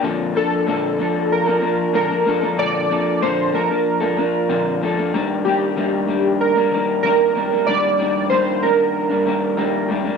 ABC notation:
X:1
M:4/4
L:1/16
Q:1/4=94
K:Eblyd
V:1 name="Synth keys"
z2 A6 B4 B4 | d4 c2 B8 z2 | z2 G6 B4 B4 | d4 c2 B8 z2 |]
V:2 name="Clean electric guitar"
[B,,D,F,B,DA]2 [F,B,DA]2 [B,,D,F,B,DA]2 [F,B,DA]3 [F,B,DA] [F,B,D]2 [B,,D,F,B,DA] [F,B,DA] [F,B,DA] [F,B,DA] | [B,,D,F,B,DA]2 [F,B,DA]2 [B,,D,F,B,DA]2 [F,B,DA] [F,B,D]2 [F,B,DA] [F,B,D]2 [B,,D,F,B,D]2 [F,B,DA] [F,B,DA] | [E,G,B,D]2 [E,G,B,D]2 [E,G,B,D]2 [E,G,B,D]3 [G,B,D] [E,G,B,D]2 [E,G,B,D]2 [E,G,B,D] [G,B,D] | [E,G,B,D]2 [E,G,B,D]2 [E,G,B,D]2 [E,G,B,D]3 [G,B,D] [E,G,B,D]2 [E,G,B,D]2 [E,G,B,D] [G,B,D] |]